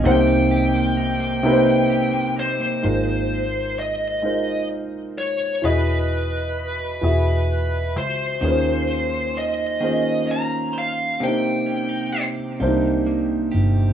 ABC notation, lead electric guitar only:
X:1
M:6/8
L:1/8
Q:3/8=43
K:Ab
V:1 name="Lead electric guitar"
g4- g c- | c2 e2 z d | =B4- B c- | c2 e2 b f |
g2 z4 |]